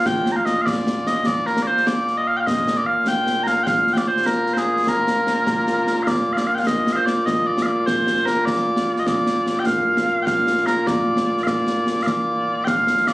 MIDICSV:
0, 0, Header, 1, 3, 480
1, 0, Start_track
1, 0, Key_signature, -2, "major"
1, 0, Tempo, 400000
1, 80, Time_signature, 6, 3, 24, 8
1, 15760, End_track
2, 0, Start_track
2, 0, Title_t, "Bagpipes"
2, 0, Program_c, 0, 109
2, 0, Note_on_c, 0, 46, 89
2, 0, Note_on_c, 0, 58, 89
2, 0, Note_on_c, 0, 65, 89
2, 76, Note_on_c, 0, 79, 101
2, 382, Note_off_c, 0, 79, 0
2, 382, Note_on_c, 0, 82, 91
2, 433, Note_off_c, 0, 82, 0
2, 433, Note_on_c, 0, 77, 91
2, 546, Note_off_c, 0, 77, 0
2, 546, Note_on_c, 0, 75, 94
2, 740, Note_off_c, 0, 75, 0
2, 740, Note_on_c, 0, 77, 107
2, 788, Note_off_c, 0, 77, 0
2, 788, Note_on_c, 0, 74, 107
2, 1284, Note_off_c, 0, 74, 0
2, 1284, Note_on_c, 0, 75, 107
2, 1517, Note_off_c, 0, 75, 0
2, 1517, Note_on_c, 0, 74, 96
2, 1759, Note_off_c, 0, 74, 0
2, 1759, Note_on_c, 0, 70, 98
2, 1952, Note_off_c, 0, 70, 0
2, 1952, Note_on_c, 0, 74, 91
2, 2006, Note_off_c, 0, 74, 0
2, 2006, Note_on_c, 0, 72, 91
2, 2244, Note_off_c, 0, 72, 0
2, 2244, Note_on_c, 0, 74, 99
2, 2607, Note_off_c, 0, 74, 0
2, 2607, Note_on_c, 0, 75, 94
2, 2729, Note_off_c, 0, 75, 0
2, 2729, Note_on_c, 0, 77, 107
2, 2843, Note_off_c, 0, 77, 0
2, 2843, Note_on_c, 0, 79, 74
2, 2883, Note_on_c, 0, 77, 74
2, 2884, Note_off_c, 0, 79, 0
2, 2961, Note_off_c, 0, 77, 0
2, 2961, Note_on_c, 0, 75, 101
2, 3322, Note_off_c, 0, 75, 0
2, 3322, Note_on_c, 0, 74, 89
2, 3435, Note_off_c, 0, 74, 0
2, 3435, Note_on_c, 0, 77, 84
2, 3698, Note_off_c, 0, 77, 0
2, 3698, Note_on_c, 0, 79, 106
2, 4121, Note_off_c, 0, 79, 0
2, 4121, Note_on_c, 0, 82, 97
2, 4165, Note_off_c, 0, 82, 0
2, 4165, Note_on_c, 0, 77, 97
2, 4363, Note_off_c, 0, 77, 0
2, 4363, Note_on_c, 0, 79, 96
2, 4404, Note_off_c, 0, 79, 0
2, 4404, Note_on_c, 0, 77, 96
2, 4719, Note_off_c, 0, 77, 0
2, 4719, Note_on_c, 0, 79, 87
2, 4770, Note_off_c, 0, 79, 0
2, 4770, Note_on_c, 0, 74, 87
2, 4894, Note_off_c, 0, 74, 0
2, 4894, Note_on_c, 0, 72, 83
2, 5117, Note_off_c, 0, 72, 0
2, 5117, Note_on_c, 0, 70, 90
2, 5442, Note_off_c, 0, 70, 0
2, 5443, Note_on_c, 0, 72, 82
2, 5490, Note_off_c, 0, 72, 0
2, 5490, Note_on_c, 0, 68, 82
2, 5608, Note_off_c, 0, 68, 0
2, 5608, Note_on_c, 0, 68, 84
2, 5858, Note_off_c, 0, 68, 0
2, 5858, Note_on_c, 0, 70, 82
2, 7236, Note_off_c, 0, 70, 0
2, 7236, Note_on_c, 0, 77, 92
2, 7288, Note_off_c, 0, 77, 0
2, 7288, Note_on_c, 0, 74, 92
2, 7595, Note_off_c, 0, 74, 0
2, 7595, Note_on_c, 0, 77, 94
2, 7646, Note_off_c, 0, 77, 0
2, 7646, Note_on_c, 0, 74, 94
2, 7763, Note_off_c, 0, 74, 0
2, 7763, Note_on_c, 0, 77, 95
2, 7861, Note_off_c, 0, 77, 0
2, 7861, Note_on_c, 0, 79, 74
2, 7911, Note_off_c, 0, 79, 0
2, 7911, Note_on_c, 0, 77, 74
2, 8004, Note_off_c, 0, 77, 0
2, 8004, Note_on_c, 0, 75, 109
2, 8312, Note_off_c, 0, 75, 0
2, 8312, Note_on_c, 0, 77, 99
2, 8352, Note_off_c, 0, 77, 0
2, 8352, Note_on_c, 0, 72, 99
2, 8472, Note_off_c, 0, 72, 0
2, 8472, Note_on_c, 0, 74, 98
2, 8707, Note_off_c, 0, 74, 0
2, 8707, Note_on_c, 0, 75, 106
2, 8956, Note_off_c, 0, 75, 0
2, 8956, Note_on_c, 0, 74, 100
2, 9148, Note_off_c, 0, 74, 0
2, 9148, Note_on_c, 0, 77, 88
2, 9192, Note_off_c, 0, 77, 0
2, 9192, Note_on_c, 0, 74, 88
2, 9436, Note_off_c, 0, 74, 0
2, 9436, Note_on_c, 0, 72, 106
2, 9908, Note_off_c, 0, 72, 0
2, 9908, Note_on_c, 0, 70, 94
2, 10147, Note_off_c, 0, 70, 0
2, 10147, Note_on_c, 0, 74, 100
2, 10791, Note_off_c, 0, 74, 0
2, 10791, Note_on_c, 0, 75, 75
2, 10878, Note_off_c, 0, 75, 0
2, 10878, Note_on_c, 0, 74, 102
2, 11511, Note_off_c, 0, 74, 0
2, 11511, Note_on_c, 0, 79, 76
2, 11592, Note_off_c, 0, 79, 0
2, 11592, Note_on_c, 0, 77, 92
2, 12270, Note_off_c, 0, 77, 0
2, 12270, Note_on_c, 0, 79, 113
2, 12310, Note_off_c, 0, 79, 0
2, 12310, Note_on_c, 0, 77, 113
2, 12798, Note_off_c, 0, 77, 0
2, 12798, Note_on_c, 0, 70, 91
2, 13043, Note_off_c, 0, 70, 0
2, 13043, Note_on_c, 0, 74, 97
2, 13719, Note_off_c, 0, 74, 0
2, 13719, Note_on_c, 0, 77, 102
2, 13768, Note_on_c, 0, 74, 102
2, 13769, Note_off_c, 0, 77, 0
2, 14431, Note_off_c, 0, 74, 0
2, 14431, Note_on_c, 0, 77, 95
2, 14476, Note_off_c, 0, 77, 0
2, 14476, Note_on_c, 0, 74, 95
2, 15173, Note_off_c, 0, 74, 0
2, 15173, Note_on_c, 0, 79, 103
2, 15212, Note_off_c, 0, 79, 0
2, 15212, Note_on_c, 0, 77, 103
2, 15691, Note_off_c, 0, 77, 0
2, 15691, Note_on_c, 0, 74, 94
2, 15760, Note_off_c, 0, 46, 0
2, 15760, Note_off_c, 0, 58, 0
2, 15760, Note_off_c, 0, 65, 0
2, 15760, Note_off_c, 0, 74, 0
2, 15760, End_track
3, 0, Start_track
3, 0, Title_t, "Drums"
3, 71, Note_on_c, 9, 35, 58
3, 71, Note_on_c, 9, 38, 84
3, 191, Note_off_c, 9, 35, 0
3, 191, Note_off_c, 9, 38, 0
3, 316, Note_on_c, 9, 38, 71
3, 436, Note_off_c, 9, 38, 0
3, 555, Note_on_c, 9, 38, 70
3, 675, Note_off_c, 9, 38, 0
3, 800, Note_on_c, 9, 35, 56
3, 800, Note_on_c, 9, 38, 100
3, 920, Note_off_c, 9, 35, 0
3, 920, Note_off_c, 9, 38, 0
3, 1042, Note_on_c, 9, 38, 75
3, 1162, Note_off_c, 9, 38, 0
3, 1280, Note_on_c, 9, 38, 78
3, 1400, Note_off_c, 9, 38, 0
3, 1524, Note_on_c, 9, 35, 60
3, 1524, Note_on_c, 9, 38, 103
3, 1644, Note_off_c, 9, 35, 0
3, 1644, Note_off_c, 9, 38, 0
3, 1761, Note_on_c, 9, 38, 29
3, 1881, Note_off_c, 9, 38, 0
3, 1881, Note_on_c, 9, 38, 83
3, 2001, Note_off_c, 9, 38, 0
3, 2126, Note_on_c, 9, 38, 28
3, 2244, Note_off_c, 9, 38, 0
3, 2244, Note_on_c, 9, 38, 103
3, 2364, Note_off_c, 9, 38, 0
3, 2490, Note_on_c, 9, 38, 29
3, 2610, Note_off_c, 9, 38, 0
3, 2967, Note_on_c, 9, 35, 56
3, 2967, Note_on_c, 9, 38, 85
3, 3087, Note_off_c, 9, 35, 0
3, 3087, Note_off_c, 9, 38, 0
3, 3210, Note_on_c, 9, 38, 73
3, 3330, Note_off_c, 9, 38, 0
3, 3682, Note_on_c, 9, 38, 101
3, 3802, Note_off_c, 9, 38, 0
3, 3923, Note_on_c, 9, 38, 70
3, 4043, Note_off_c, 9, 38, 0
3, 4160, Note_on_c, 9, 38, 68
3, 4280, Note_off_c, 9, 38, 0
3, 4402, Note_on_c, 9, 35, 54
3, 4402, Note_on_c, 9, 38, 94
3, 4522, Note_off_c, 9, 35, 0
3, 4522, Note_off_c, 9, 38, 0
3, 4646, Note_on_c, 9, 38, 26
3, 4759, Note_off_c, 9, 38, 0
3, 4759, Note_on_c, 9, 38, 79
3, 4879, Note_off_c, 9, 38, 0
3, 5002, Note_on_c, 9, 38, 27
3, 5118, Note_off_c, 9, 38, 0
3, 5118, Note_on_c, 9, 38, 95
3, 5238, Note_off_c, 9, 38, 0
3, 5357, Note_on_c, 9, 38, 28
3, 5477, Note_off_c, 9, 38, 0
3, 5479, Note_on_c, 9, 38, 70
3, 5599, Note_off_c, 9, 38, 0
3, 5721, Note_on_c, 9, 38, 24
3, 5841, Note_off_c, 9, 38, 0
3, 5845, Note_on_c, 9, 35, 52
3, 5845, Note_on_c, 9, 38, 85
3, 5965, Note_off_c, 9, 35, 0
3, 5965, Note_off_c, 9, 38, 0
3, 6086, Note_on_c, 9, 38, 68
3, 6206, Note_off_c, 9, 38, 0
3, 6325, Note_on_c, 9, 38, 75
3, 6445, Note_off_c, 9, 38, 0
3, 6561, Note_on_c, 9, 35, 50
3, 6561, Note_on_c, 9, 38, 85
3, 6681, Note_off_c, 9, 35, 0
3, 6681, Note_off_c, 9, 38, 0
3, 6804, Note_on_c, 9, 38, 68
3, 6924, Note_off_c, 9, 38, 0
3, 7045, Note_on_c, 9, 38, 70
3, 7165, Note_off_c, 9, 38, 0
3, 7284, Note_on_c, 9, 35, 55
3, 7284, Note_on_c, 9, 38, 96
3, 7404, Note_off_c, 9, 35, 0
3, 7404, Note_off_c, 9, 38, 0
3, 7645, Note_on_c, 9, 38, 78
3, 7765, Note_off_c, 9, 38, 0
3, 7885, Note_on_c, 9, 38, 29
3, 8004, Note_off_c, 9, 38, 0
3, 8004, Note_on_c, 9, 35, 53
3, 8004, Note_on_c, 9, 38, 101
3, 8124, Note_off_c, 9, 35, 0
3, 8124, Note_off_c, 9, 38, 0
3, 8245, Note_on_c, 9, 38, 79
3, 8365, Note_off_c, 9, 38, 0
3, 8485, Note_on_c, 9, 38, 72
3, 8605, Note_off_c, 9, 38, 0
3, 8727, Note_on_c, 9, 35, 59
3, 8727, Note_on_c, 9, 38, 94
3, 8847, Note_off_c, 9, 35, 0
3, 8847, Note_off_c, 9, 38, 0
3, 9090, Note_on_c, 9, 38, 78
3, 9210, Note_off_c, 9, 38, 0
3, 9449, Note_on_c, 9, 35, 52
3, 9449, Note_on_c, 9, 38, 93
3, 9569, Note_off_c, 9, 35, 0
3, 9569, Note_off_c, 9, 38, 0
3, 9685, Note_on_c, 9, 38, 75
3, 9803, Note_off_c, 9, 38, 0
3, 9803, Note_on_c, 9, 38, 29
3, 9923, Note_off_c, 9, 38, 0
3, 9924, Note_on_c, 9, 38, 70
3, 10044, Note_off_c, 9, 38, 0
3, 10164, Note_on_c, 9, 35, 60
3, 10164, Note_on_c, 9, 38, 89
3, 10284, Note_off_c, 9, 35, 0
3, 10284, Note_off_c, 9, 38, 0
3, 10518, Note_on_c, 9, 38, 77
3, 10638, Note_off_c, 9, 38, 0
3, 10759, Note_on_c, 9, 38, 28
3, 10879, Note_off_c, 9, 38, 0
3, 10879, Note_on_c, 9, 35, 54
3, 10879, Note_on_c, 9, 38, 91
3, 10999, Note_off_c, 9, 35, 0
3, 10999, Note_off_c, 9, 38, 0
3, 11119, Note_on_c, 9, 38, 73
3, 11239, Note_off_c, 9, 38, 0
3, 11360, Note_on_c, 9, 38, 62
3, 11480, Note_off_c, 9, 38, 0
3, 11603, Note_on_c, 9, 35, 55
3, 11603, Note_on_c, 9, 38, 85
3, 11723, Note_off_c, 9, 35, 0
3, 11723, Note_off_c, 9, 38, 0
3, 11966, Note_on_c, 9, 38, 78
3, 12086, Note_off_c, 9, 38, 0
3, 12324, Note_on_c, 9, 35, 54
3, 12324, Note_on_c, 9, 38, 100
3, 12444, Note_off_c, 9, 35, 0
3, 12444, Note_off_c, 9, 38, 0
3, 12566, Note_on_c, 9, 38, 80
3, 12686, Note_off_c, 9, 38, 0
3, 12688, Note_on_c, 9, 38, 32
3, 12806, Note_off_c, 9, 38, 0
3, 12806, Note_on_c, 9, 38, 76
3, 12926, Note_off_c, 9, 38, 0
3, 13048, Note_on_c, 9, 35, 64
3, 13048, Note_on_c, 9, 38, 103
3, 13168, Note_off_c, 9, 35, 0
3, 13168, Note_off_c, 9, 38, 0
3, 13404, Note_on_c, 9, 38, 84
3, 13524, Note_off_c, 9, 38, 0
3, 13651, Note_on_c, 9, 38, 30
3, 13763, Note_off_c, 9, 38, 0
3, 13763, Note_on_c, 9, 35, 59
3, 13763, Note_on_c, 9, 38, 97
3, 13883, Note_off_c, 9, 35, 0
3, 13883, Note_off_c, 9, 38, 0
3, 14001, Note_on_c, 9, 38, 84
3, 14121, Note_off_c, 9, 38, 0
3, 14242, Note_on_c, 9, 38, 70
3, 14362, Note_off_c, 9, 38, 0
3, 14484, Note_on_c, 9, 35, 61
3, 14484, Note_on_c, 9, 38, 90
3, 14604, Note_off_c, 9, 35, 0
3, 14604, Note_off_c, 9, 38, 0
3, 15205, Note_on_c, 9, 35, 59
3, 15205, Note_on_c, 9, 38, 102
3, 15325, Note_off_c, 9, 35, 0
3, 15325, Note_off_c, 9, 38, 0
3, 15446, Note_on_c, 9, 38, 78
3, 15566, Note_off_c, 9, 38, 0
3, 15567, Note_on_c, 9, 38, 28
3, 15686, Note_off_c, 9, 38, 0
3, 15686, Note_on_c, 9, 38, 76
3, 15760, Note_off_c, 9, 38, 0
3, 15760, End_track
0, 0, End_of_file